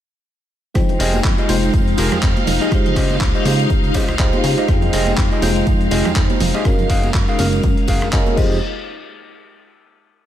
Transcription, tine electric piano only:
0, 0, Header, 1, 2, 480
1, 0, Start_track
1, 0, Key_signature, -4, "minor"
1, 0, Tempo, 491803
1, 733, Time_signature, 4, 2, 24, 8
1, 10014, End_track
2, 0, Start_track
2, 0, Title_t, "Tine electric piano"
2, 0, Program_c, 0, 4
2, 726, Note_on_c, 0, 56, 79
2, 730, Note_on_c, 0, 63, 73
2, 732, Note_on_c, 0, 65, 73
2, 738, Note_on_c, 0, 79, 70
2, 741, Note_on_c, 0, 72, 83
2, 1424, Note_off_c, 0, 56, 0
2, 1426, Note_off_c, 0, 63, 0
2, 1427, Note_off_c, 0, 65, 0
2, 1430, Note_off_c, 0, 79, 0
2, 1432, Note_off_c, 0, 72, 0
2, 1446, Note_on_c, 0, 56, 87
2, 1449, Note_on_c, 0, 63, 79
2, 1453, Note_on_c, 0, 65, 82
2, 1458, Note_on_c, 0, 79, 80
2, 1461, Note_on_c, 0, 72, 97
2, 2624, Note_off_c, 0, 56, 0
2, 2626, Note_off_c, 0, 63, 0
2, 2628, Note_off_c, 0, 65, 0
2, 2630, Note_off_c, 0, 79, 0
2, 2632, Note_off_c, 0, 72, 0
2, 2646, Note_on_c, 0, 56, 82
2, 2650, Note_on_c, 0, 63, 80
2, 2653, Note_on_c, 0, 65, 81
2, 2659, Note_on_c, 0, 67, 77
2, 2661, Note_on_c, 0, 72, 98
2, 3344, Note_off_c, 0, 56, 0
2, 3346, Note_off_c, 0, 63, 0
2, 3348, Note_off_c, 0, 65, 0
2, 3351, Note_off_c, 0, 67, 0
2, 3352, Note_off_c, 0, 72, 0
2, 3368, Note_on_c, 0, 56, 74
2, 3372, Note_on_c, 0, 63, 69
2, 3375, Note_on_c, 0, 65, 68
2, 3379, Note_on_c, 0, 67, 68
2, 3383, Note_on_c, 0, 72, 82
2, 4065, Note_off_c, 0, 56, 0
2, 4067, Note_off_c, 0, 63, 0
2, 4069, Note_off_c, 0, 65, 0
2, 4071, Note_off_c, 0, 67, 0
2, 4073, Note_off_c, 0, 72, 0
2, 4091, Note_on_c, 0, 56, 97
2, 4093, Note_on_c, 0, 63, 91
2, 4095, Note_on_c, 0, 65, 88
2, 4096, Note_on_c, 0, 67, 87
2, 4098, Note_on_c, 0, 72, 102
2, 4547, Note_off_c, 0, 56, 0
2, 4548, Note_off_c, 0, 63, 0
2, 4549, Note_off_c, 0, 65, 0
2, 4549, Note_off_c, 0, 67, 0
2, 4550, Note_off_c, 0, 72, 0
2, 4565, Note_on_c, 0, 56, 79
2, 4569, Note_on_c, 0, 63, 74
2, 4573, Note_on_c, 0, 65, 75
2, 4576, Note_on_c, 0, 79, 75
2, 4582, Note_on_c, 0, 72, 89
2, 5264, Note_off_c, 0, 56, 0
2, 5266, Note_off_c, 0, 63, 0
2, 5268, Note_off_c, 0, 65, 0
2, 5269, Note_off_c, 0, 79, 0
2, 5272, Note_off_c, 0, 72, 0
2, 5284, Note_on_c, 0, 56, 90
2, 5288, Note_on_c, 0, 63, 85
2, 5292, Note_on_c, 0, 65, 83
2, 5296, Note_on_c, 0, 79, 83
2, 5300, Note_on_c, 0, 72, 101
2, 6463, Note_off_c, 0, 56, 0
2, 6465, Note_off_c, 0, 63, 0
2, 6467, Note_off_c, 0, 65, 0
2, 6469, Note_off_c, 0, 79, 0
2, 6471, Note_off_c, 0, 72, 0
2, 6488, Note_on_c, 0, 56, 89
2, 6490, Note_on_c, 0, 61, 82
2, 6495, Note_on_c, 0, 77, 81
2, 6498, Note_on_c, 0, 66, 82
2, 6503, Note_on_c, 0, 70, 98
2, 7185, Note_off_c, 0, 56, 0
2, 7186, Note_off_c, 0, 61, 0
2, 7189, Note_off_c, 0, 77, 0
2, 7190, Note_off_c, 0, 66, 0
2, 7193, Note_off_c, 0, 70, 0
2, 7206, Note_on_c, 0, 56, 74
2, 7211, Note_on_c, 0, 61, 70
2, 7214, Note_on_c, 0, 77, 68
2, 7219, Note_on_c, 0, 66, 70
2, 7222, Note_on_c, 0, 70, 85
2, 7905, Note_off_c, 0, 56, 0
2, 7907, Note_off_c, 0, 61, 0
2, 7908, Note_off_c, 0, 77, 0
2, 7911, Note_off_c, 0, 66, 0
2, 7912, Note_off_c, 0, 70, 0
2, 7931, Note_on_c, 0, 56, 98
2, 7934, Note_on_c, 0, 61, 89
2, 7936, Note_on_c, 0, 77, 86
2, 7938, Note_on_c, 0, 66, 87
2, 7940, Note_on_c, 0, 70, 108
2, 8153, Note_off_c, 0, 56, 0
2, 8165, Note_on_c, 0, 56, 90
2, 8171, Note_on_c, 0, 63, 84
2, 8174, Note_off_c, 0, 61, 0
2, 8174, Note_off_c, 0, 77, 0
2, 8175, Note_off_c, 0, 66, 0
2, 8176, Note_off_c, 0, 70, 0
2, 8178, Note_on_c, 0, 65, 81
2, 8183, Note_on_c, 0, 67, 83
2, 8188, Note_on_c, 0, 72, 96
2, 8353, Note_off_c, 0, 56, 0
2, 8356, Note_off_c, 0, 63, 0
2, 8360, Note_off_c, 0, 65, 0
2, 8363, Note_off_c, 0, 67, 0
2, 8365, Note_off_c, 0, 72, 0
2, 10014, End_track
0, 0, End_of_file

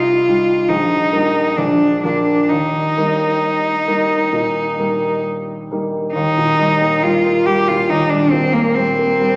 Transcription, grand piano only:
0, 0, Header, 1, 2, 480
1, 0, Start_track
1, 0, Key_signature, -3, "major"
1, 0, Tempo, 867052
1, 875, Tempo, 914634
1, 1361, Time_signature, 4, 2, 24, 8
1, 3275, Tempo, 868307
1, 5049, End_track
2, 0, Start_track
2, 0, Title_t, "Grand piano"
2, 0, Program_c, 0, 0
2, 0, Control_c, 0, 64, 127
2, 0, Note_on_c, 0, 36, 40
2, 0, Note_on_c, 0, 55, 28
2, 0, Note_on_c, 0, 63, 33
2, 131, Note_off_c, 0, 55, 0
2, 132, Note_off_c, 0, 63, 0
2, 155, Note_on_c, 0, 55, 31
2, 155, Note_on_c, 0, 63, 33
2, 364, Note_off_c, 0, 55, 0
2, 364, Note_off_c, 0, 63, 0
2, 386, Note_on_c, 0, 34, 38
2, 395, Control_c, 0, 64, 0
2, 400, Note_off_c, 0, 36, 0
2, 495, Control_c, 0, 64, 127
2, 618, Note_off_c, 0, 34, 0
2, 622, Note_on_c, 0, 58, 30
2, 624, Note_on_c, 0, 55, 29
2, 629, Note_on_c, 0, 63, 31
2, 852, Note_off_c, 0, 55, 0
2, 852, Note_off_c, 0, 58, 0
2, 855, Note_off_c, 0, 63, 0
2, 876, Note_on_c, 0, 34, 40
2, 884, Control_c, 0, 64, 0
2, 989, Control_c, 0, 64, 127
2, 1110, Note_off_c, 0, 34, 0
2, 1115, Note_on_c, 0, 53, 30
2, 1120, Note_on_c, 0, 58, 28
2, 1123, Note_on_c, 0, 65, 31
2, 1339, Note_off_c, 0, 53, 0
2, 1341, Note_off_c, 0, 58, 0
2, 1343, Note_off_c, 0, 65, 0
2, 1364, Note_on_c, 0, 39, 37
2, 1370, Control_c, 0, 64, 0
2, 1459, Control_c, 0, 64, 127
2, 1598, Note_off_c, 0, 39, 0
2, 1605, Note_on_c, 0, 55, 29
2, 1607, Note_on_c, 0, 58, 27
2, 1609, Note_on_c, 0, 63, 30
2, 2056, Note_off_c, 0, 55, 0
2, 2057, Note_off_c, 0, 58, 0
2, 2058, Note_off_c, 0, 63, 0
2, 2080, Note_on_c, 0, 55, 28
2, 2081, Note_on_c, 0, 58, 28
2, 2084, Note_on_c, 0, 63, 31
2, 2295, Note_off_c, 0, 55, 0
2, 2296, Note_off_c, 0, 58, 0
2, 2297, Note_off_c, 0, 63, 0
2, 2316, Note_on_c, 0, 46, 33
2, 2551, Note_off_c, 0, 46, 0
2, 2557, Note_on_c, 0, 55, 29
2, 2561, Note_on_c, 0, 58, 26
2, 2565, Note_on_c, 0, 63, 32
2, 3019, Note_off_c, 0, 55, 0
2, 3021, Note_off_c, 0, 58, 0
2, 3023, Note_off_c, 0, 63, 0
2, 3045, Note_on_c, 0, 55, 27
2, 3048, Note_on_c, 0, 58, 28
2, 3051, Note_on_c, 0, 63, 30
2, 3257, Note_off_c, 0, 55, 0
2, 3258, Note_off_c, 0, 58, 0
2, 3260, Note_off_c, 0, 63, 0
2, 3276, Note_on_c, 0, 39, 44
2, 3285, Control_c, 0, 64, 0
2, 3392, Control_c, 0, 64, 127
2, 3397, Note_on_c, 0, 46, 32
2, 3516, Note_on_c, 0, 55, 33
2, 3593, Note_off_c, 0, 46, 0
2, 3638, Note_on_c, 0, 58, 33
2, 3713, Note_off_c, 0, 55, 0
2, 3761, Note_on_c, 0, 55, 38
2, 3834, Note_off_c, 0, 58, 0
2, 3885, Note_on_c, 0, 58, 32
2, 3955, Note_off_c, 0, 55, 0
2, 4001, Note_on_c, 0, 55, 36
2, 4076, Note_off_c, 0, 58, 0
2, 4130, Note_on_c, 0, 46, 33
2, 4192, Note_off_c, 0, 55, 0
2, 4219, Note_off_c, 0, 39, 0
2, 4246, Note_on_c, 0, 39, 35
2, 4315, Note_off_c, 0, 46, 0
2, 4360, Note_on_c, 0, 55, 31
2, 4474, Note_on_c, 0, 46, 35
2, 4547, Note_off_c, 0, 55, 0
2, 4602, Note_on_c, 0, 58, 35
2, 4665, Note_off_c, 0, 46, 0
2, 4716, Note_on_c, 0, 55, 37
2, 4789, Note_off_c, 0, 58, 0
2, 4841, Note_on_c, 0, 58, 33
2, 4908, Note_off_c, 0, 55, 0
2, 4961, Note_on_c, 0, 55, 35
2, 5031, Note_off_c, 0, 58, 0
2, 5049, Note_off_c, 0, 39, 0
2, 5049, Note_off_c, 0, 55, 0
2, 5049, End_track
0, 0, End_of_file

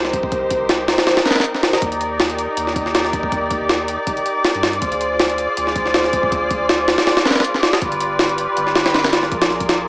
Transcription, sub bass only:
0, 0, Header, 1, 2, 480
1, 0, Start_track
1, 0, Key_signature, -3, "minor"
1, 0, Tempo, 375000
1, 412, Time_signature, 4, 2, 24, 8
1, 12648, End_track
2, 0, Start_track
2, 0, Title_t, "Sub bass"
2, 0, Program_c, 0, 38
2, 0, Note_on_c, 0, 36, 102
2, 394, Note_off_c, 0, 36, 0
2, 409, Note_on_c, 0, 36, 93
2, 1238, Note_off_c, 0, 36, 0
2, 2331, Note_on_c, 0, 39, 97
2, 3159, Note_off_c, 0, 39, 0
2, 3288, Note_on_c, 0, 39, 98
2, 4232, Note_off_c, 0, 39, 0
2, 4250, Note_on_c, 0, 39, 97
2, 5078, Note_off_c, 0, 39, 0
2, 5820, Note_on_c, 0, 43, 81
2, 6154, Note_off_c, 0, 43, 0
2, 6168, Note_on_c, 0, 38, 102
2, 6998, Note_off_c, 0, 38, 0
2, 7133, Note_on_c, 0, 38, 98
2, 8075, Note_off_c, 0, 38, 0
2, 8089, Note_on_c, 0, 38, 98
2, 8918, Note_off_c, 0, 38, 0
2, 10007, Note_on_c, 0, 31, 99
2, 10837, Note_off_c, 0, 31, 0
2, 10968, Note_on_c, 0, 31, 101
2, 11912, Note_off_c, 0, 31, 0
2, 11928, Note_on_c, 0, 34, 96
2, 12648, Note_off_c, 0, 34, 0
2, 12648, End_track
0, 0, End_of_file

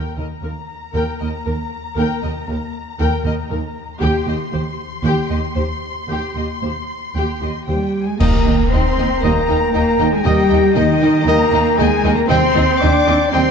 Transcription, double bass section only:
0, 0, Header, 1, 2, 480
1, 0, Start_track
1, 0, Key_signature, -3, "major"
1, 0, Tempo, 512383
1, 1849, Time_signature, 4, 2, 24, 8
1, 4724, Tempo, 525394
1, 8084, Tempo, 512383
1, 12570, End_track
2, 0, Start_track
2, 0, Title_t, "Double bass section"
2, 0, Program_c, 0, 48
2, 164, Note_on_c, 0, 39, 32
2, 239, Note_off_c, 0, 39, 0
2, 396, Note_on_c, 0, 39, 32
2, 470, Note_off_c, 0, 39, 0
2, 878, Note_on_c, 0, 39, 46
2, 953, Note_off_c, 0, 39, 0
2, 1130, Note_on_c, 0, 39, 30
2, 1205, Note_off_c, 0, 39, 0
2, 1370, Note_on_c, 0, 39, 34
2, 1445, Note_off_c, 0, 39, 0
2, 1835, Note_on_c, 0, 39, 53
2, 1910, Note_off_c, 0, 39, 0
2, 2084, Note_on_c, 0, 39, 40
2, 2159, Note_off_c, 0, 39, 0
2, 2318, Note_on_c, 0, 39, 40
2, 2393, Note_off_c, 0, 39, 0
2, 2804, Note_on_c, 0, 39, 60
2, 2879, Note_off_c, 0, 39, 0
2, 3028, Note_on_c, 0, 39, 38
2, 3103, Note_off_c, 0, 39, 0
2, 3270, Note_on_c, 0, 39, 48
2, 3345, Note_off_c, 0, 39, 0
2, 3756, Note_on_c, 0, 39, 64
2, 3831, Note_off_c, 0, 39, 0
2, 3998, Note_on_c, 0, 39, 45
2, 4073, Note_off_c, 0, 39, 0
2, 4242, Note_on_c, 0, 39, 42
2, 4317, Note_off_c, 0, 39, 0
2, 4714, Note_on_c, 0, 39, 64
2, 4787, Note_off_c, 0, 39, 0
2, 4958, Note_on_c, 0, 39, 35
2, 5031, Note_off_c, 0, 39, 0
2, 5193, Note_on_c, 0, 39, 40
2, 5266, Note_off_c, 0, 39, 0
2, 5678, Note_on_c, 0, 39, 51
2, 5751, Note_off_c, 0, 39, 0
2, 5923, Note_on_c, 0, 39, 35
2, 5996, Note_off_c, 0, 39, 0
2, 6164, Note_on_c, 0, 39, 34
2, 6237, Note_off_c, 0, 39, 0
2, 6646, Note_on_c, 0, 39, 48
2, 6719, Note_off_c, 0, 39, 0
2, 6881, Note_on_c, 0, 39, 31
2, 6954, Note_off_c, 0, 39, 0
2, 7127, Note_on_c, 0, 39, 37
2, 7200, Note_off_c, 0, 39, 0
2, 7604, Note_on_c, 0, 39, 73
2, 7678, Note_off_c, 0, 39, 0
2, 7848, Note_on_c, 0, 39, 68
2, 7921, Note_off_c, 0, 39, 0
2, 8090, Note_on_c, 0, 39, 63
2, 8165, Note_off_c, 0, 39, 0
2, 8314, Note_on_c, 0, 39, 60
2, 8389, Note_off_c, 0, 39, 0
2, 8558, Note_on_c, 0, 39, 81
2, 8633, Note_off_c, 0, 39, 0
2, 8796, Note_on_c, 0, 39, 63
2, 8871, Note_off_c, 0, 39, 0
2, 9043, Note_on_c, 0, 39, 76
2, 9118, Note_off_c, 0, 39, 0
2, 9273, Note_on_c, 0, 39, 75
2, 9348, Note_off_c, 0, 39, 0
2, 9510, Note_on_c, 0, 39, 88
2, 9585, Note_off_c, 0, 39, 0
2, 9755, Note_on_c, 0, 39, 82
2, 9830, Note_off_c, 0, 39, 0
2, 9985, Note_on_c, 0, 39, 76
2, 10060, Note_off_c, 0, 39, 0
2, 10233, Note_on_c, 0, 39, 71
2, 10308, Note_off_c, 0, 39, 0
2, 10452, Note_on_c, 0, 39, 89
2, 10527, Note_off_c, 0, 39, 0
2, 10705, Note_on_c, 0, 39, 75
2, 10780, Note_off_c, 0, 39, 0
2, 10953, Note_on_c, 0, 39, 97
2, 11028, Note_off_c, 0, 39, 0
2, 11186, Note_on_c, 0, 39, 88
2, 11261, Note_off_c, 0, 39, 0
2, 11432, Note_on_c, 0, 39, 97
2, 11507, Note_off_c, 0, 39, 0
2, 11675, Note_on_c, 0, 39, 94
2, 11750, Note_off_c, 0, 39, 0
2, 11933, Note_on_c, 0, 39, 91
2, 12008, Note_off_c, 0, 39, 0
2, 12162, Note_on_c, 0, 39, 75
2, 12237, Note_off_c, 0, 39, 0
2, 12410, Note_on_c, 0, 39, 86
2, 12485, Note_off_c, 0, 39, 0
2, 12570, End_track
0, 0, End_of_file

